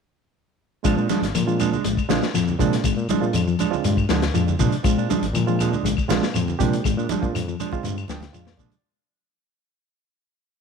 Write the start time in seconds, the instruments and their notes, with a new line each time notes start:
0.83 analog synth bass A#1, clean electric guitar F3 G#3 D4, reed electric piano G#3 C4 D4 F4, kick, closed hi-hat, claves, shekere
0.97 analog synth bass A#2, clean electric guitar G#3 D4, shekere
1.09 clean electric guitar F3 G3 G#3 D4, snare, closed hi-hat, high conga, shekere
1.22 analog synth bass G#1, snare, closed hi-hat, shekere
1.34 analog synth bass A#2, clean electric guitar F3, closed hi-hat, high conga, claves, shekere
1.47 clean electric guitar F3, reed electric piano G#3 C4 D4 F4, shekere
1.60 clean electric guitar F3 G#3 D4, closed hi-hat, low conga, claves, shekere
1.72 clean electric guitar G#3 D4, high conga, shekere
1.84 analog synth bass A#1, clean electric guitar G#3, closed hi-hat, shekere
1.97 kick, claves, shekere
2.09 analog synth bass A#1, clean electric guitar F3 G#3 D4, reed electric piano G#3 C4 D4 F4, snare, closed hi-hat, high conga, shekere
2.22 snare, shekere
2.34 analog synth bass F2, clean electric guitar F3, snare, closed hi-hat, claves, shekere
2.48 high conga, shekere
2.59 analog synth bass A#2, clean electric guitar C3 F3 G#3 D4, reed electric piano G#3 C4 D4 F4, kick, closed hi-hat, high conga, low conga, shekere
2.73 snare, closed hi-hat, shekere
2.84 analog synth bass G#1, clean electric guitar G#3, kick, closed hi-hat, claves, shekere
2.97 analog synth bass A#2, shekere
3.08 analog synth bass A#1, clean electric guitar F3 G3 G#3 D4, closed hi-hat, high conga, shekere
3.20 analog synth bass A#2, reed electric piano G#3 C4 D4 F4, shekere
3.33 analog synth bass F2, clean electric guitar F3, closed hi-hat, claves, shekere
3.47 clean electric guitar F3, shekere
3.59 clean electric guitar F3 G#3 D4, closed hi-hat, low conga, claves, shekere
3.71 reed electric piano G#3 C4 D4 F4, high conga, shekere
3.84 analog synth bass G2, clean electric guitar G#3, closed hi-hat, high conga, shekere
3.97 kick, claves, shekere
4.09 analog synth bass D2, clean electric guitar F3 G#3 D4, snare, closed hi-hat, high conga, shekere
4.22 snare, closed hi-hat, shekere
4.34 analog synth bass F2, clean electric guitar F3, reed electric piano G#3 C4 D4 F4, closed hi-hat, claves, shekere
4.48 high conga, shekere
4.59 analog synth bass A#2, clean electric guitar C3 F3 G#3 D4, kick, closed hi-hat, high conga, low conga, shekere
4.72 closed hi-hat, shekere
4.83 analog synth bass A#1, reed electric piano G#3 C4 D4 F4, clean electric guitar G#3, kick, closed hi-hat, claves, shekere
4.97 analog synth bass A#2, clean electric guitar D4, shekere
5.10 clean electric guitar F3 G3 G#3 D4, closed hi-hat, high conga, low conga, shekere
5.22 analog synth bass G#1, closed hi-hat, shekere
5.33 analog synth bass A#2, clean electric guitar F3, closed hi-hat, high conga, claves, shekere
5.46 clean electric guitar F3, reed electric piano G#3 C4 D4 F4, shekere
5.59 clean electric guitar F3 G#3 D4, closed hi-hat, low conga, claves, shekere
5.73 clean electric guitar G#3 D4, high conga, shekere
5.83 analog synth bass A#1, clean electric guitar G#3, closed hi-hat, high conga, shekere
5.97 kick, claves, shekere
6.08 analog synth bass A#1, clean electric guitar F3 G#3 D4, reed electric piano G#3 C4 D4 F4, snare, closed hi-hat, high conga, shekere
6.23 snare, shekere
6.34 analog synth bass F2, clean electric guitar F3, closed hi-hat, claves, shekere
6.48 high conga, shekere
6.59 analog synth bass A#2, clean electric guitar C3 F3 G#3 D4, reed electric piano G#3 C4 D4 G4, kick, closed hi-hat, high conga, low conga, shekere
6.73 closed hi-hat, shekere
6.84 analog synth bass G#1, clean electric guitar G#3, kick, closed hi-hat, claves, shekere
6.97 analog synth bass A#2, clean electric guitar G#3 D4, shekere
7.09 analog synth bass A#1, clean electric guitar F3 G3 G#3 D4, closed hi-hat, high conga, low conga, shekere
7.21 analog synth bass A#2, reed electric piano G#3 C4 D4 F4, kick, shekere
7.34 analog synth bass F2, clean electric guitar F3, closed hi-hat, claves, shekere
7.48 clean electric guitar F3, shekere
7.60 clean electric guitar F3 G#3 D4, closed hi-hat, low conga, claves, shekere
7.71 reed electric piano G#3 C4 D4 F4, kick, high conga, shekere
7.83 analog synth bass G2, clean electric guitar G#3, closed hi-hat, high conga, shekere
7.98 claves, shekere
8.08 analog synth bass D2, clean electric guitar F3 G#3 D4, reed electric piano G5, snare, closed hi-hat, high conga, shekere
8.20 snare, closed hi-hat, high conga, shekere
8.32 analog synth bass F2, clean electric guitar F3, reed electric piano G#3 C4 D4 F4 F5, closed hi-hat, claves, shekere
8.45 snare, low conga, shekere
8.57 analog synth bass A#2, clean electric guitar C3 F3 G#3 D4, reed electric piano D5, kick, closed hi-hat, low conga, shekere
8.70 closed hi-hat, low conga, shekere